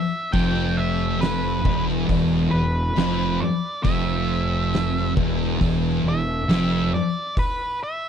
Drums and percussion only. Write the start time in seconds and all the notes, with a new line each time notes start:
0.33 kick, open hi-hat
1.21 snare, open hi-hat
1.65 kick
1.89 snare
2.09 kick, open hi-hat
2.96 snare, open hi-hat
3.84 kick, open hi-hat
4.73 snare, open hi-hat
5.17 kick
5.41 snare
5.61 kick, open hi-hat
6.49 snare, open hi-hat
7.37 kick, open hi-hat